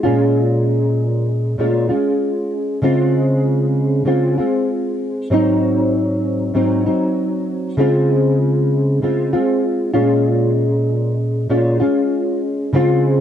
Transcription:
0.03 1.57 A#2 medium
0.03 1.59 G#3 medium
0.03 1.59 C#4 medium
0.03 1.60 F4 medium
1.58 1.90 A#2 medium
1.58 1.89 G#3 medium
1.58 1.89 C#4 medium
1.58 1.88 F4 medium
1.89 2.82 G#3 soft
1.89 2.83 C#4 soft
1.89 2.84 F4 soft
2.82 4.04 C#3 medium
2.82 4.06 G#3 medium
2.82 4.06 C4 medium
2.82 4.06 F4 medium
4.05 4.37 C#3 medium
4.05 4.38 G#3 medium
4.05 4.38 C4 medium
4.05 4.37 F4 medium
4.38 5.31 G#3 soft
4.38 5.32 C4 soft
4.38 5.31 F4 medium
5.30 6.53 G#2 medium
5.30 6.54 F#3 medium
5.30 6.55 C4 medium
5.30 6.55 D#4 medium
6.54 6.85 G#2 medium
6.54 6.86 F#3 medium
6.54 6.85 C4 medium
6.54 6.85 D#4 medium
6.86 7.78 F#3 soft
6.86 7.79 C4 soft
6.86 7.78 D#4 medium
7.77 9.01 C#3 medium
7.77 9.02 G#3 medium
7.77 9.02 C4 medium
7.77 9.03 F4 medium
9.02 9.33 C#3 medium
9.02 9.33 G#3 medium
9.02 9.33 C4 medium
9.02 9.32 F4 medium
9.33 9.95 G#3 soft
9.33 9.94 C4 medium
9.33 9.93 F4 medium
9.93 11.48 A#2 medium
9.93 11.50 G#3 medium
9.93 11.50 C#4 medium
9.93 11.51 F4 medium
11.50 11.80 A#2 medium
11.50 11.81 G#3 medium
11.50 11.80 C#4 medium
11.50 11.79 F4 medium
11.80 12.73 G#3 soft
11.80 12.74 C#4 medium
11.80 12.75 F4 medium
12.73 13.21 C#3 medium
12.73 13.21 G#3 medium
12.73 13.21 C4 medium
12.73 13.21 F4 medium

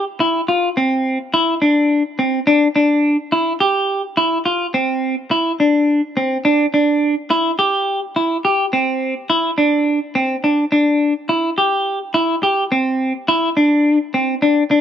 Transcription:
0.20 0.40 E4 medium
0.48 0.69 F4 medium
0.77 1.17 C4 medium
1.34 1.54 E4 medium
1.62 2.02 D4 medium
2.19 2.39 C4 medium
2.47 2.67 D4 medium
2.76 3.16 D4 medium
3.32 3.52 E4 medium
3.60 4.01 G4 medium
4.17 4.38 E4 medium
4.45 4.66 F4 medium
4.74 5.15 C4 medium
5.31 5.51 E4 medium
5.60 6.00 D4 medium
6.17 6.37 C4 medium
6.45 6.65 D4 medium
6.74 7.14 D4 medium
7.30 7.51 E4 medium
7.59 7.99 G4 medium
8.16 8.36 E4 medium
8.45 8.65 G4 medium
8.73 9.14 C4 medium
9.30 9.50 E4 medium
9.58 9.99 D4 medium
10.15 10.36 C4 medium
10.44 10.64 D4 medium
10.72 11.13 D4 medium
11.29 11.49 E4 medium
11.58 11.98 G4 medium
12.14 12.35 E4 medium
12.43 12.63 G4 medium
12.72 13.12 C4 medium
13.28 13.49 E4 medium
13.57 13.97 D4 medium
14.14 14.34 C4 medium
14.42 14.63 D4 medium
14.71 14.81 D4 medium

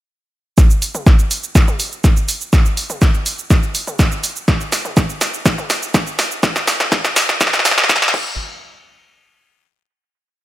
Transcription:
0.58 kick loud
0.58 snare soft
0.58 shaker medium
0.70 shaker soft
0.82 open hi-hat loud
0.82 shaker medium
0.95 mid tom medium
0.95 shaker soft
1.06 kick loud
1.06 snare soft
1.06 shaker medium
1.19 shaker soft
1.31 open hi-hat loud
1.31 shaker medium
1.44 shaker soft
1.55 kick loud
1.55 snare medium
1.55 shaker medium
1.68 mid tom medium
1.68 shaker soft
1.80 open hi-hat loud
1.80 shaker medium
1.92 shaker soft
2.04 kick loud
2.04 snare medium
2.04 shaker medium
2.17 shaker soft
2.28 open hi-hat loud
2.28 shaker medium
2.41 shaker soft
2.53 kick loud
2.53 snare medium
2.53 shaker medium
2.65 shaker soft
2.77 open hi-hat loud
2.77 shaker medium
2.90 mid tom medium
2.90 shaker soft
3.02 kick loud
3.02 snare medium
3.02 shaker medium
3.14 shaker soft
3.26 open hi-hat loud
3.26 shaker medium
3.39 shaker soft
3.50 kick loud
3.50 snare medium
3.50 shaker medium
3.63 shaker soft
3.75 open hi-hat loud
3.75 shaker medium
3.87 mid tom medium
3.87 shaker soft
3.99 kick loud
3.99 snare medium
3.99 shaker medium
4.12 shaker soft
4.24 open hi-hat loud
4.24 shaker medium
4.36 shaker soft
4.48 kick loud
4.48 snare medium
4.48 shaker medium
4.61 shaker soft
4.72 snare medium
4.72 open hi-hat loud
4.72 shaker medium
4.85 mid tom medium
4.85 shaker soft
4.97 kick loud
4.97 snare medium
4.97 shaker medium
5.09 shaker soft
5.21 snare medium
5.21 open hi-hat loud
5.21 shaker medium
5.34 shaker soft
5.46 kick loud
5.46 snare medium
5.46 shaker medium
5.58 mid tom medium
5.58 shaker soft
5.70 snare medium
5.70 open hi-hat loud
5.70 shaker medium
5.83 shaker soft
5.94 kick loud
5.94 snare medium
5.94 shaker medium
6.07 shaker soft
6.19 snare medium
6.19 open hi-hat loud
6.19 shaker medium
6.31 shaker soft
6.43 kick loud
6.43 snare medium
6.43 shaker medium
6.56 snare medium
6.56 shaker soft
6.67 snare medium
6.67 open hi-hat loud
6.67 shaker medium
6.80 snare medium
6.80 mid tom medium
6.80 shaker soft
6.92 kick loud
6.92 snare medium
6.92 shaker medium
7.05 snare medium
7.05 shaker soft
7.16 snare loud
7.16 open hi-hat loud
7.16 shaker medium
7.29 snare medium
7.29 shaker soft
7.41 kick loud
7.41 snare loud
7.41 shaker medium
7.47 snare medium
7.53 snare medium
7.53 shaker soft
7.59 snare medium
7.65 snare loud
7.65 open hi-hat loud
7.65 shaker medium
7.71 snare medium
7.78 snare loud
7.78 mid tom medium
7.78 shaker soft
7.84 snare medium
7.89 kick loud
7.89 snare loud
7.89 shaker medium
7.96 snare loud
8.02 snare loud
8.02 shaker soft
8.08 snare loud
8.14 kick loud
8.14 crash medium

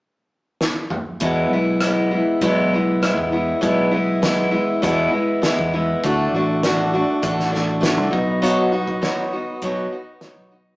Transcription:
0.61 snare medium
0.90 mid tom medium
1.20 1.44 E2 medium
1.20 1.52 E2 medium
1.20 1.52 B2 medium
1.20 1.52 E3 medium
1.20 1.53 G#3 medium
1.20 1.52 B3 medium
1.20 1.52 E4 medium
1.20 kick loud
1.20 closed hi-hat medium
1.50 2.21 B1 medium
1.50 1.80 E3 soft
1.50 1.82 G#3 soft
1.50 1.82 B3 medium
1.50 1.83 E4 medium
1.80 2.12 E3 medium
1.80 2.11 G#3 medium
1.80 2.11 B3 medium
1.80 2.10 E4 medium
1.80 cross-stick medium
1.80 closed hi-hat medium
2.11 2.41 E3 soft
2.11 2.42 G#3 soft
2.11 2.41 B3 soft
2.11 2.41 E4 medium
2.41 3.17 B1 medium
2.41 2.72 E2 medium
2.41 2.72 B2 medium
2.41 2.72 E3 medium
2.41 2.73 G#3 medium
2.41 2.73 B3 medium
2.41 2.72 E4 medium
2.41 kick loud
2.41 closed hi-hat medium
2.73 3.01 E3 soft
2.73 3.02 G#3 soft
2.73 3.02 B3 soft
2.73 3.03 E4 soft
3.02 3.33 E3 medium
3.02 3.32 G#3 medium
3.02 3.32 B3 medium
3.02 3.31 E4 medium
3.02 cross-stick loud
3.02 closed hi-hat medium
3.17 3.52 E2 medium
3.17 kick medium
3.32 3.60 E3 soft
3.32 3.61 G#3 soft
3.32 3.61 B3 medium
3.32 3.61 E4 medium
3.61 4.56 B1 loud
3.61 3.92 E2 medium
3.61 3.92 B2 medium
3.61 3.92 E3 medium
3.61 3.92 G#3 medium
3.61 3.91 B3 medium
3.61 3.90 E4 medium
3.61 kick loud
3.61 closed hi-hat medium
3.91 4.21 E3 soft
3.91 4.21 G#3 soft
3.91 4.23 B3 medium
3.91 4.22 E4 medium
4.22 4.52 E3 medium
4.22 4.51 G#3 medium
4.22 4.50 B3 medium
4.22 4.50 E4 medium
4.22 snare loud
4.22 closed hi-hat medium
4.51 4.81 E3 soft
4.51 4.82 G#3 medium
4.51 4.82 B3 medium
4.51 4.82 E4 medium
4.82 5.13 E2 medium
4.82 5.06 E2 medium
4.82 5.13 B2 medium
4.82 5.13 E3 loud
4.82 5.12 G#3 medium
4.82 5.11 B3 medium
4.82 5.10 E4 loud
4.82 kick loud
4.82 closed hi-hat medium
5.11 5.41 E3 soft
5.11 5.42 G#3 soft
5.11 5.42 B3 soft
5.11 5.42 E4 medium
5.42 5.72 E3 medium
5.42 5.73 G#3 medium
5.42 5.73 B3 medium
5.42 5.72 E4 medium
5.42 snare loud
5.42 closed hi-hat medium
5.59 5.94 E2 medium
5.59 kick medium
5.73 6.03 E3 soft
5.73 6.04 G#3 soft
5.73 6.04 B3 medium
5.73 6.03 E4 medium
6.03 6.26 D2 loud
6.03 6.33 D3 medium
6.03 6.34 A3 medium
6.03 6.34 D4 medium
6.03 8.11 D4 medium
6.03 6.33 F#4 medium
6.03 8.11 F#4 medium
6.03 8.12 A4 medium
6.03 8.11 D5 medium
6.03 kick medium
6.03 closed hi-hat medium
6.32 7.02 A1 medium
6.32 6.62 A3 soft
6.32 6.63 D4 medium
6.32 6.63 F#4 medium
6.63 6.93 D3 medium
6.63 6.93 A3 medium
6.63 6.94 D4 medium
6.63 6.92 F#4 medium
6.63 snare medium
6.63 closed hi-hat medium
6.93 7.22 A3 soft
6.93 7.22 D4 medium
6.93 7.22 F#4 medium
7.22 7.97 A1 medium
7.22 7.53 D3 medium
7.22 7.52 A3 medium
7.22 7.51 D4 medium
7.22 7.50 F#4 loud
7.22 kick loud
7.22 closed hi-hat medium
7.39 snare soft
7.51 7.80 A3 soft
7.51 7.80 D4 medium
7.51 7.81 F#4 medium
7.51 snare soft
7.80 8.12 D3 medium
7.80 8.12 A3 medium
7.80 8.11 D4 medium
7.80 8.09 F#4 medium
7.80 snare loud
7.80 closed hi-hat medium
7.97 8.09 C2 medium
8.11 9.05 B1 medium
8.11 8.41 B3 soft
8.11 8.41 D#4 soft
8.11 10.76 D#4 medium
8.11 8.42 F#4 medium
8.11 10.76 F#4 medium
8.11 10.76 B4 medium
8.11 10.76 D#5 medium
8.11 kick medium
8.42 8.72 B2 medium
8.42 8.72 F#3 medium
8.42 8.72 B3 medium
8.42 8.72 D#4 medium
8.42 8.71 F#4 loud
8.42 closed hi-hat medium
8.72 9.00 B3 soft
8.72 9.01 D#4 medium
8.72 9.02 F#4 medium
8.88 kick medium
9.02 9.32 F#3 medium
9.02 9.32 B3 medium
9.02 9.32 D#4 medium
9.02 9.32 F#4 medium
9.02 snare loud
9.02 closed hi-hat medium
9.33 9.63 B3 soft
9.33 9.63 D#4 soft
9.33 9.63 F#4 medium
9.62 9.85 B1 medium
9.62 9.93 B2 medium
9.62 9.93 F#3 medium
9.62 9.92 B3 medium
9.62 9.91 D#4 medium
9.62 9.91 F#4 medium
9.62 kick loud
9.62 closed hi-hat medium
9.92 10.22 B3 soft
9.92 10.23 D#4 soft
9.92 10.22 F#4 medium
10.21 10.53 F#3 medium
10.21 10.52 B3 medium
10.21 10.50 F#4 medium
10.21 snare medium
10.21 closed hi-hat medium
10.25 10.51 D#4 medium
10.38 10.72 B1 medium
10.51 10.76 B3 soft
10.51 10.76 D#4 medium
10.51 10.76 F#4 medium

